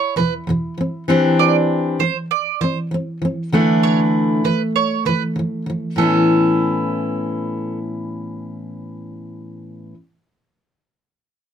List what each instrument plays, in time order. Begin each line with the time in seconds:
Already playing: steel-string acoustic guitar E4, mandolin C#5
0.16 steel-string acoustic guitar E2 B2 E3, mandolin B4
0.47 steel-string acoustic guitar E2 B2 E3
0.78 steel-string acoustic guitar E3 C4
1.08 steel-string acoustic guitar E3 C4 D4 G4
1.39 mandolin D5
1.99 steel-string acoustic guitar E3 C4, mandolin C5
2.31 mandolin D5
2.61 steel-string acoustic guitar E3 C4, mandolin C5
2.91 steel-string acoustic guitar E3 C4
3.22 steel-string acoustic guitar E3 C4
3.52 steel-string acoustic guitar D3 E3 A3 D4 E4
3.83 mandolin C#5
4.44 steel-string acoustic guitar D3 E3, mandolin B4
4.76 mandolin C#5
5.05 steel-string acoustic guitar D3 E3, mandolin B4
5.36 steel-string acoustic guitar D3 E3
5.66 steel-string acoustic guitar D3 E3
5.96 steel-string acoustic guitar A2 E3 B3, mandolin A4
6.01 steel-string acoustic guitar C#4 E4